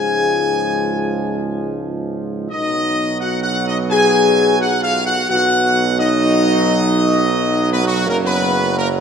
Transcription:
0.00 2.47 C#2 medium
0.00 2.47 G#2 medium
0.00 2.47 F3 medium
0.00 1.78 G#4 loud
0.00 1.77 G#5 loud
2.50 5.26 B1 medium
2.50 5.26 B2 medium
2.50 5.26 F#3 loud
2.50 3.15 D#4 loud
2.50 3.15 D#5 loud
3.20 3.41 F#4 loud
3.20 3.41 F#5 loud
3.42 3.53 F#4 loud
3.42 3.65 F#5 loud
3.66 3.78 D#4 medium
3.66 3.77 D#5 loud
3.90 4.56 G#4 loud
3.90 4.56 G#5 loud
4.59 4.70 F#4 loud
4.59 4.83 F#5 loud
4.82 5.04 F4 loud
4.82 5.04 F5 loud
5.05 5.28 F#4 loud
5.05 5.27 F#5 loud
5.29 8.08 B1 loud
5.29 7.90 B2 loud
5.29 9.00 F#3 loud
5.29 5.95 F#4 loud
5.29 5.95 F#5 loud
5.99 7.69 D#4 loud
5.99 7.68 D#5 loud
7.72 7.83 B3 loud
7.72 7.83 B4 loud
7.83 8.05 F#3 medium
7.83 8.07 F#4 loud
8.06 9.00 F#1 loud
8.06 9.00 C#3 loud
8.06 8.23 A#3 loud
8.06 8.16 A#4 loud
8.23 8.72 B3 loud
8.23 8.73 B4 loud
8.75 8.86 A#3 loud
8.75 8.88 A#4 loud

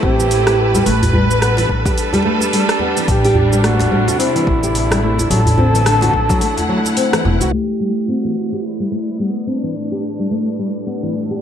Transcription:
0.00 0.82 A1 medium
0.00 0.86 A3 medium
0.00 0.18 C4 medium
0.00 1.57 E4 medium
0.00 0.82 G4 loud
0.00 7.54 A4 medium
0.00 3.98 B4 medium
0.00 0.86 C5 medium
0.00 kick medium
0.19 0.30 E3 medium
0.19 djembe tone soft
0.19 cabasa medium
0.31 open hi-hat medium
0.31 cabasa medium
0.47 0.58 G4 medium
0.47 cross-stick medium
0.47 open hi-hat soft
0.47 djembe slap soft
0.47 cabasa soft
0.74 0.85 G3 medium
0.74 open hi-hat soft
0.74 djembe tone medium
0.74 cabasa medium
0.85 1.66 A1 medium
0.85 5.30 G3 medium
0.85 1.01 A3 loud
0.85 1.93 B4 loud
0.85 open hi-hat medium
0.85 cabasa soft
1.03 open hi-hat soft
1.03 djembe bass medium
1.03 cabasa soft
1.13 1.23 G3 medium
1.13 djembe bass medium
1.25 3.98 A4 medium
1.31 6.20 D4 medium
1.31 cabasa medium
1.42 1.57 B3 medium
1.42 cross-stick medium
1.42 open hi-hat medium
1.42 cabasa soft
1.57 1.69 E3 medium
1.57 open hi-hat soft
1.57 djembe slap medium
1.57 djembe tone medium
1.57 cabasa soft
1.69 1.82 A1 medium
1.69 kick medium
1.85 1.97 G4 medium
1.85 kick loud
1.85 open hi-hat soft
1.85 djembe slap medium
1.85 cabasa medium
1.98 open hi-hat medium
1.98 cabasa medium
2.13 2.24 G3 medium
2.13 open hi-hat soft
2.13 djembe slap medium
2.13 djembe tone medium
2.13 cabasa soft
2.25 2.41 A3 medium
2.40 djembe slap soft
2.40 cabasa medium
2.53 2.62 G3 medium
2.53 open hi-hat medium
2.53 cabasa medium
2.69 cross-stick medium
2.69 open hi-hat soft
2.69 cabasa soft
2.79 2.96 B3 medium
2.79 djembe tone medium
2.97 3.08 E3 medium
2.97 open hi-hat soft
2.97 cabasa medium
3.08 3.88 A1 loud
3.08 5.30 C3 medium
3.08 3.66 G4 loud
3.08 kick loud
3.08 open hi-hat medium
3.08 cabasa soft
3.25 3.36 G4 medium
3.25 open hi-hat soft
3.25 cabasa soft
3.35 djembe bass medium
3.53 3.63 G3 medium
3.53 cabasa medium
3.64 3.79 A3 medium
3.64 4.18 F#4 loud
3.64 cross-stick medium
3.64 open hi-hat medium
3.64 cabasa soft
3.76 10.65 E4 medium
3.76 djembe slap medium
3.76 djembe tone medium
3.80 open hi-hat soft
3.80 cabasa soft
3.91 4.04 A1 medium
3.91 4.01 G3 medium
4.08 open hi-hat soft
4.08 djembe slap medium
4.08 cabasa medium
4.19 4.35 C4 medium
4.19 4.98 E4 loud
4.19 open hi-hat medium
4.19 cabasa medium
4.35 4.47 E3 medium
4.35 open hi-hat soft
4.35 cabasa soft
4.47 5.27 A1 medium
4.47 kick medium
4.63 4.74 G4 medium
4.63 djembe tone soft
4.63 cabasa medium
4.75 open hi-hat medium
4.75 cabasa soft
4.91 5.02 G3 medium
4.91 cross-stick medium
4.91 open hi-hat soft
4.91 djembe slap soft
4.91 cabasa soft
5.02 5.18 A3 medium
5.02 5.29 E4 medium
5.18 open hi-hat soft
5.18 djembe tone medium
5.18 cabasa medium
5.30 6.10 A1 medium
5.30 7.52 D3 medium
5.30 5.40 F#3 medium
5.30 7.21 A4 loud
5.30 open hi-hat medium
5.30 cabasa medium
5.46 open hi-hat soft
5.46 djembe bass medium
5.46 cabasa soft
5.54 9.75 A3 medium
5.54 5.74 C4 medium
5.54 djembe bass medium
5.74 5.85 E3 medium
5.74 open hi-hat soft
5.74 cabasa medium
5.86 cross-stick medium
5.86 open hi-hat medium
5.86 cabasa soft
6.01 6.13 F#4 medium
6.01 open hi-hat soft
6.01 djembe slap medium
6.01 djembe tone medium
6.01 cabasa soft
6.07 8.42 F#5 medium
6.14 6.27 A1 medium
6.14 kick medium
6.29 6.41 F#3 loud
6.29 kick medium
6.29 open hi-hat soft
6.29 djembe slap medium
6.29 cabasa medium
6.41 6.57 A3 loud
6.41 open hi-hat medium
6.41 cabasa medium
6.57 open hi-hat soft
6.57 djembe slap soft
6.57 djembe tone medium
6.57 cabasa soft
6.69 6.78 F#3 medium
6.85 open hi-hat soft
6.85 djembe slap soft
6.85 cabasa medium
6.97 7.12 C4 medium
6.97 open hi-hat medium
6.97 cabasa medium
7.13 7.24 E3 medium
7.13 cross-stick medium
7.13 open hi-hat soft
7.13 cabasa soft
7.25 7.38 E1 medium
7.25 djembe tone medium
7.41 7.50 C2 medium
7.41 7.52 F#4 medium
7.41 open hi-hat soft
7.41 cabasa medium
7.52 7.68 A3 medium
7.52 8.10 G4 loud
7.52 11.41 D5 medium
7.80 7.90 G3 medium
7.91 9.75 C5 medium
8.08 8.24 C4 medium
8.08 8.66 F#4 medium
8.23 8.35 E3 medium
8.23 11.41 B4 medium
8.52 8.63 G4 medium
8.65 9.21 E4 medium
8.80 8.91 G3 medium
8.92 9.07 A3 medium
9.19 9.29 G3 medium
9.19 9.47 B3 medium
9.47 9.63 C4 medium
9.47 11.10 D4 medium
9.63 9.74 E3 medium
9.75 11.41 A2 medium
9.92 11.41 D4 medium
9.92 10.02 G4 medium
9.99 11.41 G3 medium
10.19 10.30 G3 medium
10.31 10.46 A3 medium
10.31 open hi-hat medium
10.59 10.68 G3 medium
10.77 11.41 A4 medium
10.87 11.02 B3 medium
10.87 open hi-hat medium
11.03 11.14 E3 medium
11.31 11.41 G4 medium

